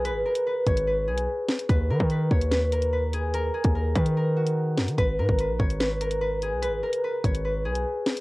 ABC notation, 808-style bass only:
X:1
M:4/4
L:1/16
Q:1/4=146
K:Abdor
V:1 name="808-style bass" clef=bass
C,,/2 A,,,3/2 z4 A,,,4 C,,2 z4 | E,,2 E, E,3 E,,8- E,,2- | E,,2 z E,,3 E,8 G,, E, | A,,,2 A,, A,,,2 B,,, A,,,8- A,,, C,,- |
C,,/2 A,,,3/2 z4 A,,,4 C,,2 z4 |]